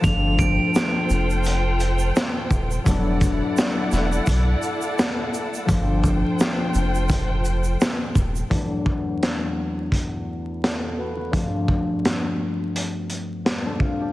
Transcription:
Already playing: string section A4
0.01 sub bass G1, harp F3 A3 C4, glockenspiel F7, kick, closed hi-hat, shaker
0.05 harp D4, string section F4 C5 G5
0.39 glockenspiel D7, kick, shaker
0.75 snare, closed hi-hat, shaker
1.10 sub bass F1, shaker
1.30 shaker
1.44 closed hi-hat, shaker
1.80 closed hi-hat, shaker
1.99 shaker
2.16 snare, closed hi-hat, shaker
2.51 sub bass D#1, kick, shaker
2.71 shaker
2.84 sub bass E1, harp F#3 A3 B3, string section E4 A4 D5 F#5, kick, closed hi-hat, shaker
2.89 harp D4
3.21 kick, closed hi-hat, shaker
3.57 snare, closed hi-hat, shaker
3.92 sub bass E1, snare, shaker
4.12 shaker
4.27 sub bass B1, kick, closed hi-hat, shaker
4.62 shaker
4.82 shaker
4.99 snare, closed hi-hat, shaker
5.34 shaker
5.54 shaker
5.66 sub bass G1, harp F3 A3 C4, string section F4 C5 G5, kick, closed hi-hat, shaker
5.70 harp D4
6.04 kick, shaker
6.40 snare, closed hi-hat, shaker
6.74 sub bass F1, shaker
6.95 shaker
7.09 kick, closed hi-hat, shaker
7.45 shaker
7.64 shaker
7.81 snare, closed hi-hat, shaker
8.15 sub bass D#1, kick, shaker
8.36 shaker
8.50 harp E2 F#3 A3 B3, kick, closed hi-hat
8.55 harp D4
8.86 kick
9.23 snare, closed hi-hat
9.92 kick, closed hi-hat
10.64 harp E4 A4, snare, closed hi-hat
10.98 harp F#4 B4
11.17 harp B3 F#4
11.31 harp G2 F3 A3 C4, kick, closed hi-hat
11.36 harp D4
11.68 kick
12.05 snare, closed hi-hat
12.76 closed hi-hat
13.10 closed hi-hat
13.45 harp G3 C4, snare, closed hi-hat
13.65 harp A3 D4
13.80 harp C4 F4, kick
14.01 harp D4 G4

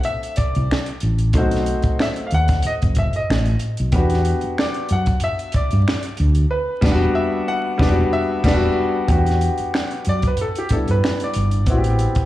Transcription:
Already playing: grand piano A3 C4 D4 G4
0.01 grand piano E5 F#5, closed hi-hat
0.23 closed hi-hat
0.36 grand piano D5, muted fretless electric bass stroke, kick, closed hi-hat
0.55 fretless electric bass C2, closed hi-hat
0.71 finger snap, snare
0.86 closed hi-hat
1.00 fretless electric bass A1, closed hi-hat
1.18 closed hi-hat
1.33 fretless electric bass B1, grand piano A3 C4 C5, kick, closed hi-hat
1.37 grand piano D#4 F#4
1.51 snare, closed hi-hat
1.66 closed hi-hat
1.82 muted fretless electric bass stroke, kick, closed hi-hat
1.99 grand piano E5, finger snap, snare
2.16 closed hi-hat
2.27 grand piano F5
2.31 fretless electric bass D#2, grand piano F#5, closed hi-hat
2.48 kick, snare, closed hi-hat
2.62 muted fretless electric bass stroke, closed hi-hat
2.66 grand piano D#5
2.82 fretless electric bass F#1, kick, closed hi-hat
2.95 grand piano E5, kick, closed hi-hat
3.13 grand piano D#5, closed hi-hat
3.30 fretless electric bass A1, finger snap, snare
3.46 closed hi-hat
3.59 closed hi-hat
3.77 fretless electric bass B1, closed hi-hat
3.92 fretless electric bass E2, grand piano B3 D4 G4 B4, kick, closed hi-hat
3.96 grand piano F#4
4.10 snare, closed hi-hat
4.25 closed hi-hat
4.41 muted fretless electric bass stroke, closed hi-hat
4.58 grand piano D5, finger snap, snare
4.74 closed hi-hat
4.89 fretless electric bass F#2, grand piano F#5, closed hi-hat
5.06 kick, closed hi-hat
5.20 grand piano E5, closed hi-hat
5.39 closed hi-hat
5.52 grand piano D5, muted fretless electric bass stroke, kick, closed hi-hat
5.71 fretless electric bass G2, closed hi-hat
5.88 finger snap, snare
6.03 closed hi-hat
6.17 fretless electric bass D2, closed hi-hat
6.35 closed hi-hat
6.51 grand piano B4
6.81 fretless electric bass E1, grand piano G3 B3 D4, kick, snare, crash
6.92 grand piano F#4
7.15 grand piano E5
7.48 grand piano F#5
7.78 fretless electric bass E1, grand piano G3 B3 D4 D5, kick
7.82 snare
7.89 grand piano F#4
8.13 grand piano E5
8.44 fretless electric bass E1, grand piano G3 B3 D4, kick, snare, crash
8.54 grand piano F#4
9.08 fretless electric bass E2, grand piano B3 D4 G4, kick, closed hi-hat
9.13 grand piano F#4
9.26 snare, closed hi-hat
9.41 closed hi-hat
9.58 muted fretless electric bass stroke, closed hi-hat
9.74 finger snap, snare
9.91 closed hi-hat
10.05 fretless electric bass F#2, closed hi-hat
10.09 grand piano D5
10.22 kick, closed hi-hat
10.27 grand piano B4
10.37 closed hi-hat
10.41 grand piano A4
10.56 grand piano G4, closed hi-hat
10.69 grand piano G3 B3 D4 A4, muted fretless electric bass stroke, kick, closed hi-hat
10.73 grand piano E4
10.88 fretless electric bass G2, grand piano B4, closed hi-hat
11.04 finger snap, snare
11.20 grand piano D5, closed hi-hat
11.33 fretless electric bass G1, closed hi-hat
11.51 closed hi-hat
11.66 fretless electric bass A1, grand piano B3 C4 E4, kick, closed hi-hat
11.71 grand piano F#4
11.78 grand piano G4
11.84 closed hi-hat
11.99 closed hi-hat
12.15 muted fretless electric bass stroke, kick, closed hi-hat

